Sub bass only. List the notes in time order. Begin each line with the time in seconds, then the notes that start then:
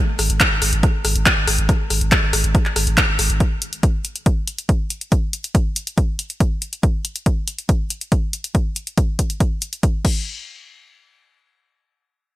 0.19 G#1
0.30 G#1
0.51 G#1
0.62 G#1
0.73 G#1
1.05 G#1
1.16 G#1
1.37 G#1
1.48 G#1
1.58 G#1
1.90 G#1
2.01 G#1
2.23 G#1
2.33 G#1
2.44 G#1
2.76 G#1
2.87 G#1
3.08 G#1
3.19 G#1
3.30 G#1